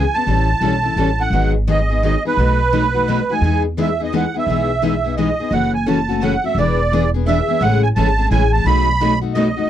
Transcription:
Already playing: G#5
0.14 B3 C#4 G#4 A5
0.27 A1 E3 G3 C#4 E4 A4
0.61 B1 E3 G3 C#4 E4 A4
0.83 C#4 E4 A4
0.96 A1 E3 G3 C#4 E4 A4
1.19 C#4 E4 A4 F#5
1.30 G#1 D#3 F#3 B3 D#4 G#4
1.67 D#3 F#3 B3 D#4 G#4 D#5
1.90 B3 D#4 G#4
2.03 D#3 F#3 B3 D#4 G#4 D#5
2.25 B3 D#4 G#4 B4
2.37 B1 B2 F#3 A3 D#4 F#4 B4
2.72 B2 F#3 A3 D#4 F#4 B4
2.94 A3 D#4 F#4
3.08 B2 F#3 A3 D#4 F#4 B4
3.30 A3 D#4 F#4 G#5
3.41 E2 E3 G#3 B3 D#4 G#4
3.78 E3 G#3 B3 D#4 G#4 E5
4.00 B3 D#4 G#4 D#5
4.13 E3 G#3 B3 D#4 G#4 F#5
4.34 B3 D#4 G#4 E5
4.47 B1 E3 G#3 B3 D#4 G#4
4.82 E3 G#3 B3 D#4 G#4
5.04 B3 D#4 G#4
5.17 E3 G#3 B3 D#4 G#4 D#5
5.40 B3 D#4 G#4
5.51 F#1 C#3 E3 F#3 A3 C#4 E4 F#4 A4 F#5
5.74 G#5
5.86 C#3 E3 F#3 A3 C#4 E4 F#4 A4 A5
6.09 A3 C#4 F#4
6.21 C#3 E3 F#3 A3 C#4 E4 F#4 A4 F#5
6.44 A3 C#4 F#4 E5
6.55 E1 E3 B3 D4 D5
6.59 G#4 B4
6.93 E3 B3 D4 G#4 B4
7.14 B3 D4 G#4
7.27 E3 B3 D4 G#4 B4 E5
7.48 B3 D4 G#4
7.61 A1 C#3 E3 G#3 A3 C#4 E4 G#4 A4 F#5
7.83 G#5
7.96 G#1 C#3 E3 G#3 A3 C#4 E4 G#4 A4 A5
8.18 A3 C#4 G#4
8.31 A1 C#3 E3 G#3 A3 C#4 E4 G#4 A4 G#5
8.53 A3 C#4 G#4 A5
8.65 B1 B2 F#3 A3 D#4 F#4 B4 B5
9.01 B2 F#3 A3 D#4 F#4 B4
9.21 A3 D#4 F#4
9.34 B2 F#3 A3 D#4 F#4 D#5
9.38 B4
9.57 A3 D#4 F#4

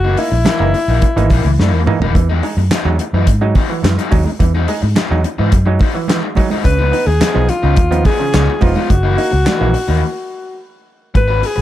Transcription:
Already playing: F#1 F#4
0.04 E3 A#3 D#4
0.17 A#3 D#4 E4, muted overdriven electric guitar stroke, open hi-hat
0.32 A#1, muted overdriven electric guitar stroke
0.45 E3 A#3 D#4, snare, clap, closed hi-hat, high conga
0.60 F#1 E3 G#3 A#3 D#4
0.74 muted overdriven electric guitar stroke, open hi-hat
0.88 A#1 E3 A#3 D#4
1.02 muted overdriven electric guitar stroke, kick, closed hi-hat, muted conga
1.16 G#1 E3 G#3 A#3 D#4, muted overdriven electric guitar stroke, closed hi-hat
1.30 A#1 E3 A#3 D#4, kick, open hi-hat, muted conga
1.45 C#2, muted overdriven electric guitar stroke
1.59 F#2 E3 A#3 D#4, snare, high conga
1.73 E2
1.86 E3 G#3 A#3 D#4, muted overdriven electric guitar stroke, mid tom, high conga
2.00 D#1 E3 A#3 D#4, floor tom
2.15 E2 E3, muted overdriven electric guitar stroke, kick, closed hi-hat, muted conga
2.29 F#3 G#3 D#4
2.43 G#3 D#4, muted overdriven electric guitar stroke, open hi-hat
2.57 F#2, muted overdriven electric guitar stroke
2.71 F#3 G#3 D#4, snare, clap, closed hi-hat, high conga
2.85 E2 F#3 G#3 D#4
2.99 muted overdriven electric guitar stroke, closed hi-hat
3.13 F#2 E3 F#3 G#3 D#4
3.27 G#2, muted overdriven electric guitar stroke, kick, closed hi-hat, muted conga
3.41 F#3 G#3 D#4, muted overdriven electric guitar stroke
3.55 F#3 G#3 D#4, kick, open hi-hat, muted conga, low conga
3.69 E3, muted overdriven electric guitar stroke
3.83 F#2 E3, muted overdriven electric guitar stroke, snare, clap, closed hi-hat, high conga
3.98 F#3 G#3 D#4, closed hi-hat
4.11 D#2 F#3 G#3 D#4, muted overdriven electric guitar stroke, kick, open hi-hat, high conga
4.25 G#3 D#4, muted overdriven electric guitar stroke, high conga
4.39 E2 E3, muted overdriven electric guitar stroke, kick, closed hi-hat, muted conga
4.55 F#3 G#3 D#4
4.68 G#3 D#4, muted overdriven electric guitar stroke, open hi-hat
4.82 G#2, muted overdriven electric guitar stroke
4.96 F#3 G#3 D#4, snare, clap, closed hi-hat, high conga
5.10 E2 F#3 G#3 D#4
5.24 muted overdriven electric guitar stroke, closed hi-hat
5.39 G#2 E3 F#3 G#3 D#4
5.52 F#2, muted overdriven electric guitar stroke, kick, closed hi-hat
5.66 F#3 G#3 D#4, muted overdriven electric guitar stroke
5.79 F#3 G#3 D#4, kick, open hi-hat, muted conga
5.94 E3, muted overdriven electric guitar stroke
6.08 E3 F#3 G#3 D#4, snare, clap, closed hi-hat, high conga
6.35 F#3 G#3 D#4, muted overdriven electric guitar stroke, kick, open hi-hat, high conga
6.50 F#3 G#3 D#4, high conga
6.64 C#2 C#3 B4, muted overdriven electric guitar stroke, kick, closed hi-hat, muted conga
6.79 F3 B3 D#4
6.92 B3 D#4, muted overdriven electric guitar stroke, open hi-hat
7.07 D#2 G#4, muted overdriven electric guitar stroke
7.21 F3 B3 D#4, snare, clap, closed hi-hat, high conga
7.34 B1 F3 B3 D#4
7.49 F4, muted overdriven electric guitar stroke, closed hi-hat
7.63 C#2 C#3 F3 B3 D#4
7.76 D#2, muted overdriven electric guitar stroke, kick, closed hi-hat, muted conga
7.91 F3 B3 D#4, muted overdriven electric guitar stroke, closed hi-hat
8.05 F3 B3 D#4 G#4, kick, open hi-hat, muted conga, low conga
8.19 C#3, muted overdriven electric guitar stroke
8.33 C#2 C#3 F3 B3 D#4, snare, clap, closed hi-hat, high conga
8.61 F1 F3 B3 D#4 F4, muted overdriven electric guitar stroke, kick, open hi-hat, high conga
8.75 F3 B3 D#4, high conga
8.90 F#1 F#4, muted overdriven electric guitar stroke, kick, closed hi-hat, muted conga
9.03 E3 A#3 D#4
9.17 A#3 D#4, muted overdriven electric guitar stroke, open hi-hat
9.31 C#2, muted overdriven electric guitar stroke
9.45 E3 A#3 D#4, snare, clap, closed hi-hat, high conga
9.60 A#1 E3 G#3 A#3 D#4
9.74 muted overdriven electric guitar stroke, open hi-hat
9.88 D#2 E3 A#3 D#4
11.14 G#1 B4, muted overdriven electric guitar stroke, kick, closed hi-hat, muted conga
11.28 C#4 F#4 B4
11.42 G#4, muted overdriven electric guitar stroke, open hi-hat
11.56 B1, muted overdriven electric guitar stroke

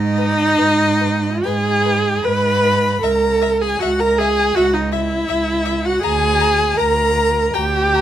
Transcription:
Already playing: G#2 D#4 D#5
0.17 B4
0.58 G#2 B4
1.00 B4
1.43 G#2 G#4 B4 G#5
1.85 B4
2.23 G#2 B4 B5
2.63 B4
3.01 C#2 A#4 E5 A#5
3.42 E5
3.61 G#4 G#5
3.79 C#2 F#4 E5 F#5
4.00 A#4 A#5
4.18 G#4 E5 G#5
4.55 C#2 F#4 E5 F#5
4.74 D#4 D#5
4.91 E4 E5
5.29 C#2 E5
5.65 E5
5.85 F#4 F#5
6.02 D2 G#4 G#5 A#5
6.40 A#5
6.77 D2 A#4 A#5
7.17 A#5
7.54 D2 G4 G5 A#5
7.94 A#5

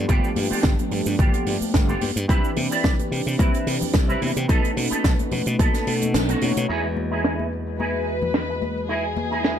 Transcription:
0.08 G1 F3 A3 B3 D4 F4 G4, kick, closed hi-hat, cabasa
0.24 cabasa
0.36 G2, open hi-hat, high conga
0.50 B3 F4 G4, muted slap bass stroke, cabasa
0.63 G1, kick, snare, cabasa
0.78 closed hi-hat, high conga, cabasa
0.91 G2, muted clean electric guitar stroke, open hi-hat
1.06 G2, cabasa
1.18 G1 B3 F4 G4, kick, closed hi-hat, high conga, cabasa
1.34 closed hi-hat, cabasa
1.46 G2, open hi-hat
1.61 muted slap bass stroke, high conga, cabasa
1.74 G1 F3 A3 B3 D4 G4, kick, snare, closed hi-hat, cabasa
1.88 B3 F4 G4, cabasa
2.01 G2, open hi-hat, high conga
2.16 G2, closed hi-hat, cabasa
2.28 C2 E3 C4 D4 E4 G4 B4, kick, closed hi-hat, cabasa
2.45 cabasa
2.56 C3, open hi-hat, high conga
2.71 C4 E4 D5, cabasa
2.84 C2, kick, snare, closed hi-hat, cabasa
2.99 closed hi-hat, high conga, cabasa
3.11 C3, muted clean electric guitar stroke, open hi-hat
3.26 C3, cabasa
3.38 C2 C4 E4 B4, kick, closed hi-hat, high conga, cabasa
3.54 closed hi-hat, cabasa
3.67 C3, open hi-hat
3.81 muted slap bass stroke, high conga, low conga, cabasa
3.94 C2, kick, snare, closed hi-hat, cabasa
4.08 C4 E4 B4, cabasa
4.21 C3 E3 B3 C4 D4 G4, open hi-hat, high conga
4.37 C3, closed hi-hat, cabasa
4.48 B1 A3 B3 C#4 D#4 F#4 A4 B4, kick, closed hi-hat, cabasa
4.64 closed hi-hat, cabasa
4.77 B2, open hi-hat, high conga
4.90 B3 D#4 A4, muted slap bass stroke, closed hi-hat, cabasa
5.04 B1, kick, snare, closed hi-hat, cabasa
5.19 closed hi-hat, high conga, cabasa
5.31 B2, muted clean electric guitar stroke, open hi-hat, low conga
5.46 B2, closed hi-hat, cabasa
5.58 B1 B3 D#4 A4, kick, closed hi-hat, high conga, cabasa
5.74 snare, closed hi-hat, cabasa
5.86 B2 A3 C#4 D#4 F#4 A4, open hi-hat
6.02 closed hi-hat, high conga, cabasa
6.14 B1, snare, closed hi-hat, cabasa
6.28 B3 D#4 F#4, closed hi-hat, cabasa
6.41 B2 A3 C#4 D#4 F#4 C#5, open hi-hat, high conga
6.57 B2, closed hi-hat, cabasa
6.68 E2 E3 G#3 D#4 E4 F#4 G#4 B4 D#5
6.96 muted clean electric guitar stroke, high conga, cabasa
7.11 D#4 E4 G#4, cabasa
7.24 snare, cabasa
7.39 high conga
7.52 cabasa
7.66 cabasa
7.79 D#4 E4 G#4 B4, high conga, cabasa
8.08 cabasa
8.22 high conga, low conga, cabasa
8.34 snare, cabasa
8.49 muted clean electric guitar stroke
8.61 muted clean electric guitar stroke, high conga, cabasa
8.77 cabasa
8.89 D#4 E4 G#4, cabasa
9.16 muted clean electric guitar stroke, high conga, cabasa
9.31 D#4 E4 G#4, cabasa
9.44 snare, cabasa

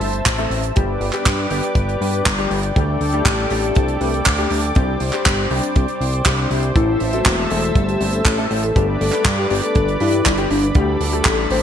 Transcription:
Already playing: C5 E5 A5 E6
0.01 G1 A3 C4 E4 C5, open hi-hat
0.13 closed hi-hat
0.26 A1, kick, clap, closed hi-hat
0.38 A3 C4 E4 A4, closed hi-hat
0.51 A1, open hi-hat
0.63 closed hi-hat
0.76 G1 G3 B3 D4 G4 B4 D5 G5 D6, kick, closed hi-hat
1.01 G1, open hi-hat
1.13 G3 B3 D4 G4, clap, closed hi-hat
1.26 G2, kick, clap, closed hi-hat
1.50 G1 G3 B3 D4 G4, open hi-hat
1.63 closed hi-hat
1.75 G1, kick, closed hi-hat
1.89 closed hi-hat
2.01 G2 G3 B3 D4 B4, open hi-hat
2.13 closed hi-hat
2.26 G1, kick, clap, closed hi-hat
2.38 G3 B3 D4 G4, closed hi-hat
2.51 G1, open hi-hat
2.63 closed hi-hat
2.76 D2 G3 A3 D4 G4 A4 D6, kick, closed hi-hat
3.01 D2, open hi-hat
3.12 G3 A3 D4 G4, closed hi-hat
3.26 A1, kick, clap, closed hi-hat
3.50 A1 G3 A3 D4 G4, open hi-hat
3.64 closed hi-hat
3.75 C2, kick, closed hi-hat
3.88 closed hi-hat
4.01 C2 G3 A3 D4 B4, open hi-hat
4.14 closed hi-hat
4.26 D2, kick, clap, closed hi-hat
4.38 G3 A3 D4 G4, closed hi-hat
4.50 D2, open hi-hat
4.63 closed hi-hat
4.75 C2 G3 C4 D4 G4 C5, kick, closed hi-hat
5.00 C2, open hi-hat
5.13 G3 C4 D4 G4, clap, closed hi-hat
5.26 G1, kick, clap, closed hi-hat
5.50 C2 G3 C4 D4 G4, open hi-hat
5.63 closed hi-hat
5.76 C2, kick, closed hi-hat
5.88 closed hi-hat
6.01 C2, open hi-hat
6.13 closed hi-hat
6.26 C2 G3 C4 D4 G4, kick, clap, closed hi-hat
6.38 closed hi-hat
6.51 C2 G3 C4 D4 E4, open hi-hat
6.63 closed hi-hat
6.76 A1 A3 C4 E4 A4 E5 A5 E6, kick, closed hi-hat
7.00 A1, open hi-hat
7.13 A3 C4 E4 F#4 A4, closed hi-hat
7.26 E1, kick, clap, closed hi-hat
7.50 E1 A3 C4 E4 A4, open hi-hat
7.64 closed hi-hat
7.75 G1, kick, closed hi-hat
7.88 G4, closed hi-hat
8.01 G1 A3 C4 E4 C5, open hi-hat
8.13 A4, closed hi-hat
8.25 A1, kick, clap, closed hi-hat
8.38 A3 C4 E4 A4, closed hi-hat
8.51 A1, open hi-hat
8.63 A4, closed hi-hat
8.76 G1 G3 B3 D4 G4 B4 D5 B5 D6, kick, closed hi-hat
9.01 G1 A4, open hi-hat
9.12 G3 B3 D4 G4, clap, closed hi-hat
9.25 G2, kick, clap, closed hi-hat
9.38 G4
9.50 G1 G3 B3 D4 G4, open hi-hat
9.63 A4, closed hi-hat
9.75 G1, kick, closed hi-hat
9.88 closed hi-hat
10.00 G2 G3 B3 D4 E4 B4, open hi-hat
10.13 closed hi-hat
10.25 G1, kick, clap, closed hi-hat
10.38 G3 B3 D4 G4, closed hi-hat
10.51 G1 D4, open hi-hat
10.63 closed hi-hat
10.75 D2 G3 A3 D4 G4 A4 D5 D6, kick, closed hi-hat
11.01 D2, open hi-hat
11.13 G3 A3 D4 G4 A4, closed hi-hat
11.25 A1, kick, clap, closed hi-hat
11.50 A1 G3 A3 D4 G4 C5, open hi-hat

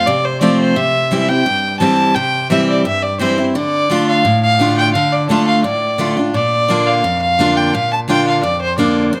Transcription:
0.07 C3 D5
0.25 C5
0.41 F3 A3 C4 F4 D5
0.60 C5
0.76 C3 E5
1.11 E3 G3 C4 E4
1.21 E5
1.28 C4 E4 G5
1.46 G2
1.80 E3 G3 C4 E4 A5
2.15 C3 G5
2.50 E3 G3 C4 E4 E5
2.70 D5
2.85 G2 E5
3.03 D5
3.19 E3 G3 C4 E4 C5
3.38 C4 E4
3.55 D3 D5
3.90 D3 A3 D4 F4
4.08 F5
4.25 A2
4.43 F5
4.59 D3 A3 D4 F4
4.78 G5
4.94 D3 F5
5.13 D5
5.29 D3 A3 D4 F4 A5
5.48 F5
5.64 A2 D5
5.98 D3 A3 D4 F4
6.17 D4 F4
6.34 A#2 D5
6.68 D3 A#3 D4 F4
6.87 F5
7.04 F2
7.22 F5
7.39 D3 A#3 D4 F4
7.57 G5
7.74 A#2 F5
7.93 A5
8.08 D3 A#3 D4 F4 G5
8.28 F5
8.43 F2 D5
8.62 C5
8.78 D3 A#3 D4 F4 D5
9.13 F2 C5

